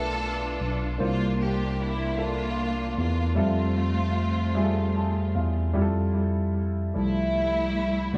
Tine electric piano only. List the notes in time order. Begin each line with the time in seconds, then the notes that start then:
Already playing: B1
0.60 B1
1.00 C2
2.98 E2
3.38 F2
5.36 E2
5.75 F2
6.95 C2
8.13 D2